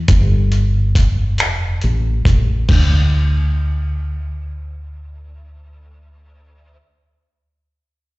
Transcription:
0, 0, Header, 1, 3, 480
1, 0, Start_track
1, 0, Tempo, 869565
1, 45, Time_signature, 6, 3, 24, 8
1, 4516, End_track
2, 0, Start_track
2, 0, Title_t, "Fretless electric bass"
2, 0, Program_c, 0, 35
2, 49, Note_on_c, 0, 31, 80
2, 771, Note_off_c, 0, 31, 0
2, 771, Note_on_c, 0, 29, 65
2, 986, Note_off_c, 0, 29, 0
2, 1013, Note_on_c, 0, 33, 61
2, 1227, Note_off_c, 0, 33, 0
2, 1244, Note_on_c, 0, 33, 59
2, 1462, Note_off_c, 0, 33, 0
2, 1486, Note_on_c, 0, 38, 69
2, 3731, Note_off_c, 0, 38, 0
2, 4516, End_track
3, 0, Start_track
3, 0, Title_t, "Drums"
3, 45, Note_on_c, 9, 42, 65
3, 46, Note_on_c, 9, 36, 92
3, 100, Note_off_c, 9, 42, 0
3, 101, Note_off_c, 9, 36, 0
3, 285, Note_on_c, 9, 42, 37
3, 340, Note_off_c, 9, 42, 0
3, 526, Note_on_c, 9, 36, 60
3, 530, Note_on_c, 9, 42, 52
3, 581, Note_off_c, 9, 36, 0
3, 585, Note_off_c, 9, 42, 0
3, 763, Note_on_c, 9, 42, 62
3, 774, Note_on_c, 9, 26, 90
3, 818, Note_off_c, 9, 42, 0
3, 829, Note_off_c, 9, 26, 0
3, 1001, Note_on_c, 9, 42, 34
3, 1057, Note_off_c, 9, 42, 0
3, 1244, Note_on_c, 9, 36, 71
3, 1250, Note_on_c, 9, 42, 64
3, 1299, Note_off_c, 9, 36, 0
3, 1306, Note_off_c, 9, 42, 0
3, 1483, Note_on_c, 9, 49, 68
3, 1484, Note_on_c, 9, 36, 76
3, 1538, Note_off_c, 9, 49, 0
3, 1539, Note_off_c, 9, 36, 0
3, 4516, End_track
0, 0, End_of_file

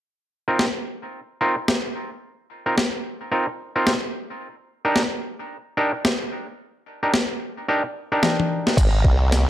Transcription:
0, 0, Header, 1, 4, 480
1, 0, Start_track
1, 0, Key_signature, -3, "minor"
1, 0, Tempo, 545455
1, 42, Time_signature, 4, 2, 24, 8
1, 8359, End_track
2, 0, Start_track
2, 0, Title_t, "Clav"
2, 0, Program_c, 0, 7
2, 420, Note_on_c, 0, 60, 80
2, 420, Note_on_c, 0, 70, 85
2, 421, Note_on_c, 0, 63, 73
2, 421, Note_on_c, 0, 65, 72
2, 576, Note_off_c, 0, 60, 0
2, 576, Note_off_c, 0, 63, 0
2, 576, Note_off_c, 0, 65, 0
2, 576, Note_off_c, 0, 70, 0
2, 1239, Note_on_c, 0, 70, 100
2, 1240, Note_on_c, 0, 60, 89
2, 1240, Note_on_c, 0, 63, 83
2, 1241, Note_on_c, 0, 65, 82
2, 1367, Note_off_c, 0, 70, 0
2, 1368, Note_off_c, 0, 60, 0
2, 1368, Note_off_c, 0, 63, 0
2, 1368, Note_off_c, 0, 65, 0
2, 2341, Note_on_c, 0, 60, 68
2, 2341, Note_on_c, 0, 65, 62
2, 2342, Note_on_c, 0, 63, 60
2, 2342, Note_on_c, 0, 70, 78
2, 2427, Note_off_c, 0, 60, 0
2, 2427, Note_off_c, 0, 63, 0
2, 2427, Note_off_c, 0, 65, 0
2, 2427, Note_off_c, 0, 70, 0
2, 2918, Note_on_c, 0, 60, 85
2, 2918, Note_on_c, 0, 63, 81
2, 2918, Note_on_c, 0, 65, 80
2, 2919, Note_on_c, 0, 70, 92
2, 3047, Note_off_c, 0, 60, 0
2, 3047, Note_off_c, 0, 63, 0
2, 3047, Note_off_c, 0, 65, 0
2, 3047, Note_off_c, 0, 70, 0
2, 3306, Note_on_c, 0, 65, 77
2, 3306, Note_on_c, 0, 70, 89
2, 3307, Note_on_c, 0, 60, 83
2, 3307, Note_on_c, 0, 63, 72
2, 3459, Note_off_c, 0, 60, 0
2, 3459, Note_off_c, 0, 63, 0
2, 3459, Note_off_c, 0, 65, 0
2, 3459, Note_off_c, 0, 70, 0
2, 4266, Note_on_c, 0, 62, 83
2, 4266, Note_on_c, 0, 67, 76
2, 4266, Note_on_c, 0, 70, 94
2, 4267, Note_on_c, 0, 63, 80
2, 4419, Note_off_c, 0, 62, 0
2, 4419, Note_off_c, 0, 63, 0
2, 4419, Note_off_c, 0, 67, 0
2, 4419, Note_off_c, 0, 70, 0
2, 5079, Note_on_c, 0, 62, 96
2, 5080, Note_on_c, 0, 63, 87
2, 5080, Note_on_c, 0, 67, 84
2, 5080, Note_on_c, 0, 70, 103
2, 5207, Note_off_c, 0, 62, 0
2, 5208, Note_off_c, 0, 63, 0
2, 5208, Note_off_c, 0, 67, 0
2, 5208, Note_off_c, 0, 70, 0
2, 6184, Note_on_c, 0, 67, 64
2, 6185, Note_on_c, 0, 62, 73
2, 6185, Note_on_c, 0, 63, 66
2, 6185, Note_on_c, 0, 70, 79
2, 6269, Note_off_c, 0, 62, 0
2, 6269, Note_off_c, 0, 63, 0
2, 6269, Note_off_c, 0, 67, 0
2, 6269, Note_off_c, 0, 70, 0
2, 6762, Note_on_c, 0, 62, 89
2, 6762, Note_on_c, 0, 63, 80
2, 6763, Note_on_c, 0, 67, 84
2, 6763, Note_on_c, 0, 70, 94
2, 6889, Note_off_c, 0, 62, 0
2, 6889, Note_off_c, 0, 63, 0
2, 6889, Note_off_c, 0, 67, 0
2, 6889, Note_off_c, 0, 70, 0
2, 7144, Note_on_c, 0, 67, 73
2, 7145, Note_on_c, 0, 62, 82
2, 7145, Note_on_c, 0, 63, 72
2, 7145, Note_on_c, 0, 70, 85
2, 7709, Note_off_c, 0, 63, 0
2, 7709, Note_off_c, 0, 67, 0
2, 7709, Note_off_c, 0, 70, 0
2, 7710, Note_off_c, 0, 62, 0
2, 8359, End_track
3, 0, Start_track
3, 0, Title_t, "Wobble bass"
3, 0, Program_c, 1, 39
3, 7719, Note_on_c, 1, 32, 98
3, 7945, Note_off_c, 1, 32, 0
3, 7961, Note_on_c, 1, 36, 98
3, 8324, Note_off_c, 1, 36, 0
3, 8359, End_track
4, 0, Start_track
4, 0, Title_t, "Drums"
4, 522, Note_on_c, 9, 38, 107
4, 610, Note_off_c, 9, 38, 0
4, 1480, Note_on_c, 9, 38, 112
4, 1568, Note_off_c, 9, 38, 0
4, 2443, Note_on_c, 9, 38, 114
4, 2531, Note_off_c, 9, 38, 0
4, 3403, Note_on_c, 9, 38, 115
4, 3491, Note_off_c, 9, 38, 0
4, 4362, Note_on_c, 9, 38, 120
4, 4450, Note_off_c, 9, 38, 0
4, 5322, Note_on_c, 9, 38, 119
4, 5410, Note_off_c, 9, 38, 0
4, 6280, Note_on_c, 9, 38, 121
4, 6368, Note_off_c, 9, 38, 0
4, 7241, Note_on_c, 9, 38, 113
4, 7241, Note_on_c, 9, 48, 57
4, 7329, Note_off_c, 9, 38, 0
4, 7329, Note_off_c, 9, 48, 0
4, 7389, Note_on_c, 9, 48, 58
4, 7477, Note_off_c, 9, 48, 0
4, 7628, Note_on_c, 9, 38, 80
4, 7716, Note_off_c, 9, 38, 0
4, 7720, Note_on_c, 9, 36, 108
4, 7723, Note_on_c, 9, 42, 78
4, 7723, Note_on_c, 9, 49, 92
4, 7808, Note_off_c, 9, 36, 0
4, 7811, Note_off_c, 9, 42, 0
4, 7811, Note_off_c, 9, 49, 0
4, 7961, Note_on_c, 9, 36, 101
4, 8049, Note_off_c, 9, 36, 0
4, 8204, Note_on_c, 9, 38, 116
4, 8204, Note_on_c, 9, 42, 79
4, 8292, Note_off_c, 9, 38, 0
4, 8292, Note_off_c, 9, 42, 0
4, 8359, End_track
0, 0, End_of_file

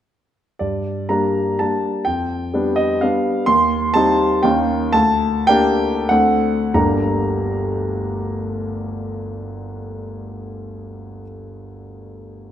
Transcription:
0, 0, Header, 1, 2, 480
1, 0, Start_track
1, 0, Key_signature, -2, "minor"
1, 0, Tempo, 497100
1, 594, Time_signature, 3, 2, 24, 8
1, 1554, Tempo, 472441
1, 4434, Tempo, 529568
1, 5394, Tempo, 598802
1, 5874, Tempo, 630252
1, 8754, Tempo, 598205
1, 10869, End_track
2, 0, Start_track
2, 0, Title_t, "Grand piano"
2, 0, Program_c, 0, 0
2, 573, Note_on_c, 0, 74, 57
2, 585, Note_on_c, 0, 43, 38
2, 777, Control_c, 0, 64, 127
2, 1052, Note_on_c, 0, 82, 63
2, 1058, Note_off_c, 0, 43, 0
2, 1058, Note_on_c, 0, 55, 40
2, 1066, Note_off_c, 0, 74, 0
2, 1066, Note_on_c, 0, 62, 39
2, 1070, Note_on_c, 0, 58, 37
2, 1506, Note_off_c, 0, 55, 0
2, 1511, Note_off_c, 0, 62, 0
2, 1513, Note_off_c, 0, 58, 0
2, 1536, Note_on_c, 0, 81, 65
2, 1542, Note_off_c, 0, 82, 0
2, 1547, Note_on_c, 0, 55, 30
2, 1552, Note_on_c, 0, 62, 35
2, 1555, Note_on_c, 0, 58, 31
2, 1563, Control_c, 0, 64, 0
2, 1976, Note_off_c, 0, 55, 0
2, 1979, Note_off_c, 0, 62, 0
2, 1980, Note_off_c, 0, 58, 0
2, 1998, Note_on_c, 0, 79, 73
2, 2011, Note_off_c, 0, 81, 0
2, 2017, Note_on_c, 0, 41, 42
2, 2188, Control_c, 0, 64, 127
2, 2495, Note_off_c, 0, 41, 0
2, 2496, Note_on_c, 0, 55, 42
2, 2501, Note_on_c, 0, 59, 43
2, 2506, Note_on_c, 0, 62, 45
2, 2721, Note_on_c, 0, 75, 76
2, 2753, Note_off_c, 0, 79, 0
2, 2954, Note_off_c, 0, 55, 0
2, 2956, Note_off_c, 0, 59, 0
2, 2958, Note_off_c, 0, 62, 0
2, 2979, Note_on_c, 0, 77, 63
2, 2981, Note_off_c, 0, 75, 0
2, 2992, Note_on_c, 0, 55, 37
2, 2996, Note_on_c, 0, 59, 37
2, 2997, Note_on_c, 0, 62, 43
2, 3010, Control_c, 0, 64, 0
2, 3416, Note_off_c, 0, 55, 0
2, 3418, Note_off_c, 0, 59, 0
2, 3419, Note_off_c, 0, 62, 0
2, 3437, Note_on_c, 0, 84, 95
2, 3448, Note_on_c, 0, 39, 57
2, 3450, Note_off_c, 0, 77, 0
2, 3637, Control_c, 0, 64, 127
2, 3917, Note_off_c, 0, 39, 0
2, 3918, Note_on_c, 0, 81, 98
2, 3926, Note_off_c, 0, 84, 0
2, 3935, Note_on_c, 0, 55, 54
2, 3937, Note_on_c, 0, 60, 50
2, 3944, Note_on_c, 0, 63, 55
2, 4392, Note_off_c, 0, 55, 0
2, 4393, Note_off_c, 0, 60, 0
2, 4396, Note_off_c, 0, 63, 0
2, 4416, Note_on_c, 0, 79, 82
2, 4424, Note_off_c, 0, 81, 0
2, 4427, Note_on_c, 0, 39, 61
2, 4427, Note_on_c, 0, 58, 47
2, 4436, Note_on_c, 0, 61, 46
2, 4438, Note_on_c, 0, 63, 41
2, 4447, Control_c, 0, 64, 0
2, 4602, Control_c, 0, 64, 127
2, 4857, Note_off_c, 0, 58, 0
2, 4862, Note_off_c, 0, 61, 0
2, 4863, Note_off_c, 0, 63, 0
2, 4870, Note_on_c, 0, 81, 98
2, 4880, Note_off_c, 0, 39, 0
2, 4883, Note_on_c, 0, 38, 65
2, 4889, Note_off_c, 0, 79, 0
2, 4904, Control_c, 0, 64, 0
2, 5067, Control_c, 0, 64, 127
2, 5364, Note_on_c, 0, 79, 110
2, 5372, Note_off_c, 0, 38, 0
2, 5380, Note_off_c, 0, 81, 0
2, 5380, Note_on_c, 0, 58, 62
2, 5383, Note_on_c, 0, 62, 62
2, 5388, Note_on_c, 0, 67, 61
2, 5836, Note_off_c, 0, 58, 0
2, 5838, Note_off_c, 0, 62, 0
2, 5840, Note_off_c, 0, 67, 0
2, 5861, Note_off_c, 0, 79, 0
2, 5864, Note_on_c, 0, 78, 84
2, 5875, Note_on_c, 0, 60, 40
2, 5880, Note_on_c, 0, 38, 57
2, 5880, Note_on_c, 0, 62, 41
2, 5884, Note_on_c, 0, 69, 43
2, 5889, Control_c, 0, 64, 0
2, 6084, Control_c, 0, 64, 127
2, 6340, Note_off_c, 0, 60, 0
2, 6342, Note_off_c, 0, 62, 0
2, 6344, Note_off_c, 0, 69, 0
2, 6352, Note_off_c, 0, 38, 0
2, 6362, Note_on_c, 0, 82, 66
2, 6363, Note_on_c, 0, 38, 46
2, 6363, Note_on_c, 0, 55, 46
2, 6364, Note_on_c, 0, 31, 53
2, 6364, Note_on_c, 0, 58, 47
2, 6365, Note_off_c, 0, 78, 0
2, 6367, Note_on_c, 0, 67, 49
2, 6369, Note_on_c, 0, 62, 45
2, 6382, Control_c, 0, 64, 0
2, 6515, Control_c, 0, 64, 127
2, 9820, Note_off_c, 0, 55, 0
2, 9820, Note_off_c, 0, 82, 0
2, 9821, Note_off_c, 0, 38, 0
2, 9821, Note_off_c, 0, 58, 0
2, 9822, Note_off_c, 0, 31, 0
2, 9825, Note_off_c, 0, 67, 0
2, 9827, Note_off_c, 0, 62, 0
2, 10869, End_track
0, 0, End_of_file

